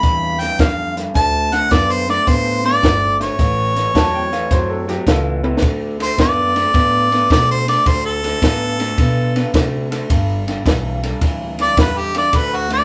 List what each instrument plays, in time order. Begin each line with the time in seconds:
Already playing: harmonica B5
0.03 upright bass E2, clean electric guitar G2 E3, kick, snare, closed hi-hat
0.40 clean electric guitar G2 E3, harmonica G5, snare, closed hi-hat
0.59 upright bass F2, clean electric guitar G2 D3, harmonica F5, kick, snare, closed hi-hat
0.97 clean electric guitar G2 D3, snare, closed hi-hat
1.15 upright bass D2, clean electric guitar D3 A3, harmonica A5, kick, snare, closed hi-hat
1.52 clean electric guitar D3 A3, harmonica F#5, snare, closed hi-hat
1.71 upright bass F#2, clean electric guitar D3 B3, harmonica D5, kick, snare, closed hi-hat
1.92 harmonica C5
2.09 clean electric guitar D3 A3, harmonica D5, snare, closed hi-hat
2.27 upright bass A2, clean electric guitar D3 B3, harmonica C5, kick, snare, closed hi-hat
2.64 clean electric guitar D3 B3, harmonica D5, snare, closed hi-hat
2.82 upright bass G1, clean electric guitar D3 A3, kick, snare, closed hi-hat
3.20 clean electric guitar D3 A3, harmonica C#5, snare, closed hi-hat
3.39 upright bass A1, clean electric guitar A2 E3, kick, snare, closed hi-hat
3.76 clean electric guitar A2 E3, snare, closed hi-hat
3.94 upright bass E2, clean electric guitar A2 F#3, upright piano A5, kick, snare, closed hi-hat
4.14 upright piano G5
4.32 clean electric guitar A2 E3, upright piano F5, snare, closed hi-hat
4.51 upright bass F#2, clean electric guitar A2 F#3, upright piano C5, kick, snare, closed hi-hat
4.69 upright piano A4
4.88 clean electric guitar A2 F#3, upright piano G4, snare, closed hi-hat
5.06 upright bass C#2, clean electric guitar A2 E3, upright piano F4 A4, kick, snare, closed hi-hat
5.44 clean electric guitar A2 E3, high tom
5.57 snare
5.62 upright bass D2, clean electric guitar D3 A3, kick, snare, ride
6.00 clean electric guitar D3 A3, harmonica C5, snare, ride
6.18 upright bass F#2, clean electric guitar D3 B3, harmonica D5, kick, snare, ride
6.56 clean electric guitar D3 A3, snare, ride
6.74 upright bass A2, clean electric guitar D3 B3, kick, snare, ride
7.12 clean electric guitar D3 B3, snare, ride
7.30 upright bass B2, clean electric guitar D3 A3, harmonica D5, kick, snare, ride
7.51 harmonica C5
7.68 clean electric guitar D3 A3, harmonica D5, snare, ride
7.86 upright bass D2, clean electric guitar D3 A3, harmonica C5, kick, snare, ride
8.06 harmonica A4
8.24 clean electric guitar D3 A3, snare, ride
8.42 upright bass A2, clean electric guitar D3 B3, kick, snare, ride
8.80 clean electric guitar D3 A3, snare, ride
8.98 upright bass B2, clean electric guitar D3 B3, kick, snare, ride
9.36 clean electric guitar D3 B3, snare, ride
9.54 upright bass C3, clean electric guitar D3 A3, kick, snare, ride
9.91 clean electric guitar D3 A3, snare, ride
10.10 upright bass G1, clean electric guitar G2 D3, kick, snare, ride
10.47 clean electric guitar G2 D3, snare, ride
10.65 upright bass B1, clean electric guitar G2 E3, kick, snare, ride
11.03 clean electric guitar G2 D3, snare, ride
11.21 upright bass D2, clean electric guitar G2 E3, kick, snare, ride
11.59 clean electric guitar G2 E3, harmonica D5, snare, ride
11.77 upright bass E2, clean electric guitar G2 D3, harmonica B4, kick, snare, ride
11.99 harmonica G4
12.14 clean electric guitar G2 D3, snare, ride
12.18 harmonica D5
12.33 upright bass D2, clean electric guitar D3 A3, harmonica B4, kick, snare, ride
12.56 harmonica F#4
12.70 clean electric guitar D3 A3, harmonica D5, snare, ride